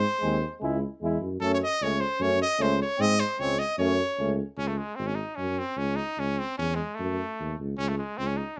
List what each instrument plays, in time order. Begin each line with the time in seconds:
Already playing: trumpet C5
0.21 tuba D#2, euphonium G#3, trombone C4
0.61 tuba C#2, euphonium G#3, trombone E4
1.02 tuba E2, euphonium G#3, trombone E4
1.21 tuba F#2
1.40 tuba F#2, euphonium A3, trombone C#4, trumpet A4
1.54 trumpet C#5
1.63 trumpet D#5
1.81 tuba C#2, euphonium A3, trombone C#4, trumpet C#5
2.00 trumpet C5
2.19 tuba F#2, euphonium A3, trombone C#4, trumpet C#5
2.42 trumpet D#5
2.58 tuba C#2, euphonium A3, trombone C#4, trumpet C5
2.82 trumpet C#5
2.98 tuba G#2, euphonium G#3, trombone C4, trumpet D#5
3.20 trumpet C5
3.39 tuba C#2, euphonium G#3, trombone C4, trumpet C#5
3.59 trumpet D#5
3.78 tuba F#2, euphonium A3, trombone C#4, trumpet C#5
4.18 tuba C#2, euphonium A3, trombone C#4
4.57 tuba C#2, trumpet C#4
4.68 trumpet A3
4.78 trumpet G#3
4.96 tuba G#1, trumpet C4
5.06 trumpet C#4
5.15 trumpet D#4
5.35 tuba F#2, trumpet C#4
5.59 trumpet C4
5.77 tuba C#2, trumpet C#4
5.96 trumpet D#4
6.18 tuba C#2, trumpet C#4
6.39 trumpet C4
6.58 tuba E2, trumpet C#4
6.75 trumpet G#3
6.95 trumpet A3
6.99 tuba F#2
7.40 tuba D#2
7.59 tuba C#2
7.77 tuba C#2, trumpet C#4
7.88 trumpet A3
7.98 trumpet G#3
8.17 tuba C#2, trumpet C4
8.27 trumpet C#4
8.37 trumpet D#4